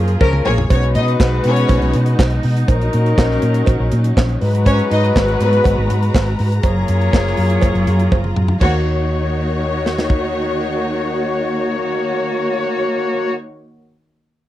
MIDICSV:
0, 0, Header, 1, 6, 480
1, 0, Start_track
1, 0, Key_signature, -6, "minor"
1, 0, Tempo, 495050
1, 678, Time_signature, 4, 2, 24, 8
1, 14046, End_track
2, 0, Start_track
2, 0, Title_t, "String section"
2, 0, Program_c, 0, 48
2, 441, Note_on_c, 0, 58, 85
2, 443, Note_on_c, 0, 68, 91
2, 444, Note_on_c, 0, 73, 108
2, 644, Note_off_c, 0, 58, 0
2, 645, Note_off_c, 0, 68, 0
2, 645, Note_off_c, 0, 73, 0
2, 683, Note_on_c, 0, 61, 97
2, 689, Note_on_c, 0, 73, 113
2, 777, Note_off_c, 0, 61, 0
2, 780, Note_off_c, 0, 73, 0
2, 919, Note_on_c, 0, 75, 109
2, 921, Note_on_c, 0, 63, 88
2, 1014, Note_off_c, 0, 75, 0
2, 1015, Note_off_c, 0, 63, 0
2, 1413, Note_on_c, 0, 61, 96
2, 1413, Note_on_c, 0, 73, 109
2, 1856, Note_off_c, 0, 61, 0
2, 1856, Note_off_c, 0, 73, 0
2, 4513, Note_on_c, 0, 61, 111
2, 4517, Note_on_c, 0, 73, 116
2, 4609, Note_off_c, 0, 61, 0
2, 4612, Note_off_c, 0, 73, 0
2, 4765, Note_on_c, 0, 63, 100
2, 4767, Note_on_c, 0, 75, 112
2, 4856, Note_off_c, 0, 63, 0
2, 4857, Note_off_c, 0, 75, 0
2, 5245, Note_on_c, 0, 71, 104
2, 5249, Note_on_c, 0, 59, 84
2, 5691, Note_off_c, 0, 71, 0
2, 5692, Note_off_c, 0, 59, 0
2, 8351, Note_on_c, 0, 73, 94
2, 8352, Note_on_c, 0, 58, 84
2, 8353, Note_on_c, 0, 66, 93
2, 12930, Note_off_c, 0, 73, 0
2, 12931, Note_off_c, 0, 58, 0
2, 12931, Note_off_c, 0, 66, 0
2, 14046, End_track
3, 0, Start_track
3, 0, Title_t, "Horn section"
3, 0, Program_c, 1, 61
3, 204, Note_on_c, 1, 61, 94
3, 205, Note_on_c, 1, 53, 92
3, 205, Note_on_c, 1, 70, 113
3, 543, Note_off_c, 1, 53, 0
3, 543, Note_off_c, 1, 61, 0
3, 544, Note_off_c, 1, 70, 0
3, 682, Note_on_c, 1, 71, 96
3, 683, Note_on_c, 1, 56, 80
3, 683, Note_on_c, 1, 66, 86
3, 2324, Note_off_c, 1, 71, 0
3, 2325, Note_off_c, 1, 56, 0
3, 2325, Note_off_c, 1, 66, 0
3, 2597, Note_on_c, 1, 54, 83
3, 2599, Note_on_c, 1, 63, 92
3, 2599, Note_on_c, 1, 70, 89
3, 4006, Note_off_c, 1, 54, 0
3, 4007, Note_off_c, 1, 63, 0
3, 4007, Note_off_c, 1, 70, 0
3, 4276, Note_on_c, 1, 54, 95
3, 4277, Note_on_c, 1, 63, 89
3, 4278, Note_on_c, 1, 71, 103
3, 6156, Note_off_c, 1, 54, 0
3, 6156, Note_off_c, 1, 63, 0
3, 6157, Note_off_c, 1, 71, 0
3, 6433, Note_on_c, 1, 58, 87
3, 6433, Note_on_c, 1, 68, 91
3, 6435, Note_on_c, 1, 73, 89
3, 8079, Note_off_c, 1, 58, 0
3, 8079, Note_off_c, 1, 68, 0
3, 8080, Note_off_c, 1, 73, 0
3, 8350, Note_on_c, 1, 73, 94
3, 8352, Note_on_c, 1, 58, 84
3, 8352, Note_on_c, 1, 66, 91
3, 12930, Note_off_c, 1, 73, 0
3, 12931, Note_off_c, 1, 58, 0
3, 12931, Note_off_c, 1, 66, 0
3, 14046, End_track
4, 0, Start_track
4, 0, Title_t, "String section"
4, 0, Program_c, 2, 48
4, 0, Note_on_c, 2, 53, 78
4, 0, Note_on_c, 2, 65, 75
4, 0, Note_on_c, 2, 68, 75
4, 0, Note_on_c, 2, 70, 79
4, 639, Note_off_c, 2, 70, 0
4, 656, Note_off_c, 2, 65, 0
4, 657, Note_off_c, 2, 53, 0
4, 657, Note_off_c, 2, 68, 0
4, 669, Note_on_c, 2, 56, 76
4, 669, Note_on_c, 2, 59, 72
4, 669, Note_on_c, 2, 63, 89
4, 2572, Note_off_c, 2, 56, 0
4, 2572, Note_off_c, 2, 59, 0
4, 2598, Note_on_c, 2, 61, 72
4, 2600, Note_on_c, 2, 54, 81
4, 4233, Note_off_c, 2, 63, 0
4, 4258, Note_off_c, 2, 61, 0
4, 4260, Note_off_c, 2, 54, 0
4, 4274, Note_on_c, 2, 82, 72
4, 4276, Note_on_c, 2, 66, 78
4, 4276, Note_on_c, 2, 71, 89
4, 4277, Note_on_c, 2, 56, 84
4, 6412, Note_off_c, 2, 66, 0
4, 6412, Note_off_c, 2, 71, 0
4, 6413, Note_off_c, 2, 56, 0
4, 6452, Note_on_c, 2, 68, 72
4, 6455, Note_on_c, 2, 65, 74
4, 6457, Note_on_c, 2, 54, 80
4, 8313, Note_off_c, 2, 82, 0
4, 8343, Note_off_c, 2, 68, 0
4, 8344, Note_off_c, 2, 65, 0
4, 8345, Note_off_c, 2, 54, 0
4, 8347, Note_on_c, 2, 66, 72
4, 8350, Note_on_c, 2, 63, 67
4, 8351, Note_on_c, 2, 51, 78
4, 8353, Note_on_c, 2, 73, 89
4, 12928, Note_off_c, 2, 66, 0
4, 12930, Note_off_c, 2, 51, 0
4, 12930, Note_off_c, 2, 63, 0
4, 12931, Note_off_c, 2, 73, 0
4, 14046, End_track
5, 0, Start_track
5, 0, Title_t, "Fingered electric bass"
5, 0, Program_c, 3, 33
5, 0, Note_on_c, 3, 42, 95
5, 148, Note_off_c, 3, 42, 0
5, 206, Note_on_c, 3, 37, 99
5, 386, Note_off_c, 3, 37, 0
5, 444, Note_on_c, 3, 34, 89
5, 625, Note_off_c, 3, 34, 0
5, 686, Note_on_c, 3, 35, 109
5, 927, Note_on_c, 3, 47, 106
5, 942, Note_off_c, 3, 35, 0
5, 1107, Note_off_c, 3, 47, 0
5, 1165, Note_on_c, 3, 35, 96
5, 1345, Note_off_c, 3, 35, 0
5, 1408, Note_on_c, 3, 47, 90
5, 1587, Note_off_c, 3, 47, 0
5, 1646, Note_on_c, 3, 35, 95
5, 1734, Note_off_c, 3, 35, 0
5, 1769, Note_on_c, 3, 35, 108
5, 1856, Note_off_c, 3, 35, 0
5, 1891, Note_on_c, 3, 47, 106
5, 2069, Note_off_c, 3, 47, 0
5, 2125, Note_on_c, 3, 35, 107
5, 2305, Note_off_c, 3, 35, 0
5, 2369, Note_on_c, 3, 47, 108
5, 2547, Note_off_c, 3, 47, 0
5, 2604, Note_on_c, 3, 34, 100
5, 2784, Note_off_c, 3, 34, 0
5, 2852, Note_on_c, 3, 46, 96
5, 3029, Note_off_c, 3, 46, 0
5, 3086, Note_on_c, 3, 34, 99
5, 3265, Note_off_c, 3, 34, 0
5, 3322, Note_on_c, 3, 46, 94
5, 3502, Note_off_c, 3, 46, 0
5, 3564, Note_on_c, 3, 34, 92
5, 3652, Note_off_c, 3, 34, 0
5, 3684, Note_on_c, 3, 34, 107
5, 3772, Note_off_c, 3, 34, 0
5, 3806, Note_on_c, 3, 46, 105
5, 3985, Note_off_c, 3, 46, 0
5, 4044, Note_on_c, 3, 34, 101
5, 4223, Note_off_c, 3, 34, 0
5, 4286, Note_on_c, 3, 44, 115
5, 4648, Note_off_c, 3, 44, 0
5, 4766, Note_on_c, 3, 44, 85
5, 4944, Note_off_c, 3, 44, 0
5, 5007, Note_on_c, 3, 32, 101
5, 5185, Note_off_c, 3, 32, 0
5, 5241, Note_on_c, 3, 44, 92
5, 5422, Note_off_c, 3, 44, 0
5, 5486, Note_on_c, 3, 32, 96
5, 5573, Note_off_c, 3, 32, 0
5, 5606, Note_on_c, 3, 32, 94
5, 5693, Note_off_c, 3, 32, 0
5, 5726, Note_on_c, 3, 44, 90
5, 5905, Note_off_c, 3, 44, 0
5, 5965, Note_on_c, 3, 32, 91
5, 6144, Note_off_c, 3, 32, 0
5, 6206, Note_on_c, 3, 44, 107
5, 6384, Note_off_c, 3, 44, 0
5, 6436, Note_on_c, 3, 30, 103
5, 6618, Note_off_c, 3, 30, 0
5, 6681, Note_on_c, 3, 42, 102
5, 6861, Note_off_c, 3, 42, 0
5, 6921, Note_on_c, 3, 30, 103
5, 7101, Note_off_c, 3, 30, 0
5, 7155, Note_on_c, 3, 42, 88
5, 7337, Note_off_c, 3, 42, 0
5, 7397, Note_on_c, 3, 30, 93
5, 7487, Note_off_c, 3, 30, 0
5, 7515, Note_on_c, 3, 30, 89
5, 7606, Note_off_c, 3, 30, 0
5, 7635, Note_on_c, 3, 42, 100
5, 7817, Note_off_c, 3, 42, 0
5, 7876, Note_on_c, 3, 30, 95
5, 8058, Note_off_c, 3, 30, 0
5, 8118, Note_on_c, 3, 42, 100
5, 8299, Note_off_c, 3, 42, 0
5, 8354, Note_on_c, 3, 39, 86
5, 13098, Note_off_c, 3, 39, 0
5, 14046, End_track
6, 0, Start_track
6, 0, Title_t, "Drums"
6, 75, Note_on_c, 9, 42, 46
6, 172, Note_off_c, 9, 42, 0
6, 199, Note_on_c, 9, 48, 62
6, 202, Note_on_c, 9, 36, 127
6, 205, Note_on_c, 9, 56, 100
6, 296, Note_off_c, 9, 48, 0
6, 299, Note_off_c, 9, 36, 0
6, 302, Note_off_c, 9, 56, 0
6, 320, Note_on_c, 9, 47, 65
6, 417, Note_off_c, 9, 47, 0
6, 441, Note_on_c, 9, 45, 90
6, 538, Note_off_c, 9, 45, 0
6, 564, Note_on_c, 9, 43, 102
6, 661, Note_off_c, 9, 43, 0
6, 680, Note_on_c, 9, 56, 79
6, 683, Note_on_c, 9, 36, 116
6, 684, Note_on_c, 9, 42, 89
6, 777, Note_off_c, 9, 56, 0
6, 780, Note_off_c, 9, 36, 0
6, 781, Note_off_c, 9, 42, 0
6, 805, Note_on_c, 9, 42, 35
6, 902, Note_off_c, 9, 42, 0
6, 922, Note_on_c, 9, 42, 73
6, 1019, Note_off_c, 9, 42, 0
6, 1049, Note_on_c, 9, 42, 37
6, 1145, Note_off_c, 9, 42, 0
6, 1162, Note_on_c, 9, 36, 115
6, 1164, Note_on_c, 9, 56, 78
6, 1167, Note_on_c, 9, 38, 126
6, 1177, Note_on_c, 9, 39, 97
6, 1259, Note_off_c, 9, 36, 0
6, 1261, Note_off_c, 9, 56, 0
6, 1264, Note_off_c, 9, 38, 0
6, 1274, Note_off_c, 9, 39, 0
6, 1394, Note_on_c, 9, 42, 67
6, 1491, Note_off_c, 9, 42, 0
6, 1515, Note_on_c, 9, 42, 50
6, 1612, Note_off_c, 9, 42, 0
6, 1635, Note_on_c, 9, 56, 89
6, 1641, Note_on_c, 9, 36, 115
6, 1641, Note_on_c, 9, 42, 78
6, 1732, Note_off_c, 9, 56, 0
6, 1738, Note_off_c, 9, 36, 0
6, 1738, Note_off_c, 9, 42, 0
6, 1764, Note_on_c, 9, 42, 33
6, 1861, Note_off_c, 9, 42, 0
6, 1876, Note_on_c, 9, 42, 71
6, 1973, Note_off_c, 9, 42, 0
6, 1997, Note_on_c, 9, 42, 46
6, 2094, Note_off_c, 9, 42, 0
6, 2122, Note_on_c, 9, 36, 127
6, 2125, Note_on_c, 9, 56, 97
6, 2128, Note_on_c, 9, 38, 117
6, 2139, Note_on_c, 9, 39, 106
6, 2219, Note_off_c, 9, 36, 0
6, 2222, Note_off_c, 9, 56, 0
6, 2225, Note_off_c, 9, 38, 0
6, 2232, Note_on_c, 9, 42, 38
6, 2236, Note_off_c, 9, 39, 0
6, 2329, Note_off_c, 9, 42, 0
6, 2357, Note_on_c, 9, 46, 74
6, 2454, Note_off_c, 9, 46, 0
6, 2488, Note_on_c, 9, 42, 44
6, 2585, Note_off_c, 9, 42, 0
6, 2600, Note_on_c, 9, 56, 70
6, 2601, Note_on_c, 9, 36, 112
6, 2601, Note_on_c, 9, 42, 77
6, 2697, Note_off_c, 9, 56, 0
6, 2698, Note_off_c, 9, 36, 0
6, 2698, Note_off_c, 9, 42, 0
6, 2729, Note_on_c, 9, 42, 33
6, 2826, Note_off_c, 9, 42, 0
6, 2842, Note_on_c, 9, 42, 66
6, 2939, Note_off_c, 9, 42, 0
6, 2969, Note_on_c, 9, 42, 36
6, 3066, Note_off_c, 9, 42, 0
6, 3081, Note_on_c, 9, 36, 114
6, 3086, Note_on_c, 9, 56, 70
6, 3088, Note_on_c, 9, 38, 114
6, 3099, Note_on_c, 9, 39, 91
6, 3178, Note_off_c, 9, 36, 0
6, 3183, Note_off_c, 9, 56, 0
6, 3185, Note_off_c, 9, 38, 0
6, 3196, Note_off_c, 9, 39, 0
6, 3210, Note_on_c, 9, 38, 45
6, 3307, Note_off_c, 9, 38, 0
6, 3316, Note_on_c, 9, 42, 67
6, 3413, Note_off_c, 9, 42, 0
6, 3435, Note_on_c, 9, 42, 51
6, 3532, Note_off_c, 9, 42, 0
6, 3552, Note_on_c, 9, 56, 87
6, 3561, Note_on_c, 9, 36, 122
6, 3563, Note_on_c, 9, 42, 81
6, 3649, Note_off_c, 9, 56, 0
6, 3658, Note_off_c, 9, 36, 0
6, 3660, Note_off_c, 9, 42, 0
6, 3797, Note_on_c, 9, 42, 69
6, 3894, Note_off_c, 9, 42, 0
6, 3920, Note_on_c, 9, 42, 49
6, 4017, Note_off_c, 9, 42, 0
6, 4042, Note_on_c, 9, 36, 111
6, 4044, Note_on_c, 9, 56, 93
6, 4050, Note_on_c, 9, 38, 125
6, 4060, Note_on_c, 9, 39, 90
6, 4139, Note_off_c, 9, 36, 0
6, 4141, Note_off_c, 9, 56, 0
6, 4147, Note_off_c, 9, 38, 0
6, 4156, Note_on_c, 9, 42, 35
6, 4157, Note_off_c, 9, 39, 0
6, 4253, Note_off_c, 9, 42, 0
6, 4280, Note_on_c, 9, 46, 77
6, 4377, Note_off_c, 9, 46, 0
6, 4410, Note_on_c, 9, 42, 46
6, 4507, Note_off_c, 9, 42, 0
6, 4516, Note_on_c, 9, 56, 68
6, 4520, Note_on_c, 9, 36, 116
6, 4524, Note_on_c, 9, 42, 90
6, 4613, Note_off_c, 9, 56, 0
6, 4617, Note_off_c, 9, 36, 0
6, 4621, Note_off_c, 9, 42, 0
6, 4644, Note_on_c, 9, 42, 33
6, 4741, Note_off_c, 9, 42, 0
6, 4765, Note_on_c, 9, 42, 75
6, 4862, Note_off_c, 9, 42, 0
6, 4891, Note_on_c, 9, 42, 37
6, 4988, Note_off_c, 9, 42, 0
6, 5000, Note_on_c, 9, 56, 80
6, 5001, Note_on_c, 9, 36, 116
6, 5010, Note_on_c, 9, 38, 115
6, 5021, Note_on_c, 9, 39, 80
6, 5097, Note_off_c, 9, 56, 0
6, 5098, Note_off_c, 9, 36, 0
6, 5107, Note_off_c, 9, 38, 0
6, 5118, Note_off_c, 9, 39, 0
6, 5121, Note_on_c, 9, 42, 37
6, 5218, Note_off_c, 9, 42, 0
6, 5241, Note_on_c, 9, 42, 69
6, 5338, Note_off_c, 9, 42, 0
6, 5361, Note_on_c, 9, 42, 51
6, 5458, Note_off_c, 9, 42, 0
6, 5471, Note_on_c, 9, 56, 93
6, 5482, Note_on_c, 9, 36, 115
6, 5490, Note_on_c, 9, 42, 90
6, 5568, Note_off_c, 9, 56, 0
6, 5579, Note_off_c, 9, 36, 0
6, 5587, Note_off_c, 9, 42, 0
6, 5722, Note_on_c, 9, 42, 78
6, 5819, Note_off_c, 9, 42, 0
6, 5843, Note_on_c, 9, 42, 42
6, 5939, Note_off_c, 9, 42, 0
6, 5958, Note_on_c, 9, 36, 124
6, 5958, Note_on_c, 9, 56, 84
6, 5968, Note_on_c, 9, 38, 114
6, 5979, Note_on_c, 9, 39, 99
6, 6055, Note_off_c, 9, 36, 0
6, 6055, Note_off_c, 9, 56, 0
6, 6065, Note_off_c, 9, 38, 0
6, 6074, Note_on_c, 9, 42, 30
6, 6076, Note_off_c, 9, 39, 0
6, 6171, Note_off_c, 9, 42, 0
6, 6194, Note_on_c, 9, 46, 73
6, 6291, Note_off_c, 9, 46, 0
6, 6323, Note_on_c, 9, 42, 47
6, 6420, Note_off_c, 9, 42, 0
6, 6431, Note_on_c, 9, 42, 85
6, 6433, Note_on_c, 9, 36, 109
6, 6435, Note_on_c, 9, 56, 68
6, 6528, Note_off_c, 9, 42, 0
6, 6530, Note_off_c, 9, 36, 0
6, 6532, Note_off_c, 9, 56, 0
6, 6673, Note_on_c, 9, 42, 69
6, 6770, Note_off_c, 9, 42, 0
6, 6800, Note_on_c, 9, 42, 34
6, 6897, Note_off_c, 9, 42, 0
6, 6916, Note_on_c, 9, 36, 125
6, 6916, Note_on_c, 9, 56, 74
6, 6925, Note_on_c, 9, 38, 116
6, 6936, Note_on_c, 9, 39, 84
6, 7013, Note_off_c, 9, 36, 0
6, 7013, Note_off_c, 9, 56, 0
6, 7022, Note_off_c, 9, 38, 0
6, 7033, Note_off_c, 9, 39, 0
6, 7048, Note_on_c, 9, 38, 41
6, 7145, Note_off_c, 9, 38, 0
6, 7148, Note_on_c, 9, 46, 66
6, 7245, Note_off_c, 9, 46, 0
6, 7271, Note_on_c, 9, 42, 43
6, 7368, Note_off_c, 9, 42, 0
6, 7383, Note_on_c, 9, 56, 89
6, 7393, Note_on_c, 9, 36, 110
6, 7395, Note_on_c, 9, 42, 84
6, 7480, Note_off_c, 9, 56, 0
6, 7490, Note_off_c, 9, 36, 0
6, 7492, Note_off_c, 9, 42, 0
6, 7517, Note_on_c, 9, 42, 32
6, 7614, Note_off_c, 9, 42, 0
6, 7633, Note_on_c, 9, 42, 71
6, 7730, Note_off_c, 9, 42, 0
6, 7752, Note_on_c, 9, 42, 47
6, 7849, Note_off_c, 9, 42, 0
6, 7872, Note_on_c, 9, 36, 117
6, 7873, Note_on_c, 9, 48, 60
6, 7873, Note_on_c, 9, 56, 95
6, 7969, Note_off_c, 9, 36, 0
6, 7970, Note_off_c, 9, 48, 0
6, 7970, Note_off_c, 9, 56, 0
6, 7990, Note_on_c, 9, 47, 58
6, 8087, Note_off_c, 9, 47, 0
6, 8110, Note_on_c, 9, 45, 92
6, 8207, Note_off_c, 9, 45, 0
6, 8226, Note_on_c, 9, 43, 87
6, 8323, Note_off_c, 9, 43, 0
6, 8350, Note_on_c, 9, 36, 107
6, 8351, Note_on_c, 9, 49, 90
6, 8352, Note_on_c, 9, 56, 71
6, 8447, Note_off_c, 9, 36, 0
6, 8448, Note_off_c, 9, 49, 0
6, 8449, Note_off_c, 9, 56, 0
6, 9562, Note_on_c, 9, 38, 60
6, 9659, Note_off_c, 9, 38, 0
6, 9681, Note_on_c, 9, 38, 70
6, 9778, Note_off_c, 9, 38, 0
6, 9792, Note_on_c, 9, 36, 97
6, 9889, Note_off_c, 9, 36, 0
6, 14046, End_track
0, 0, End_of_file